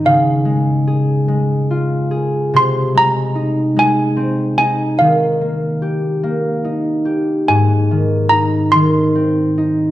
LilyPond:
<<
  \new Staff \with { instrumentName = "Handbells" } { \time 6/8 \key aes \major \tempo 4. = 48 f''2~ f''8 r8 | c'''8 bes''4 aes''4 aes''8 | f''2~ f''8 r8 | aes''4 bes''8 c'''4. | }
  \new Staff \with { instrumentName = "Harp" } { \time 6/8 \key aes \major des8 aes8 aes'8 aes8 f'8 aes'8 | c8 aes8 ees'8 aes8 c'8 ees'8 | ees8 bes8 g'8 bes8 ees'8 g'8 | aes,8 ees8 ees'8 ees8 c'8 ees'8 | }
>>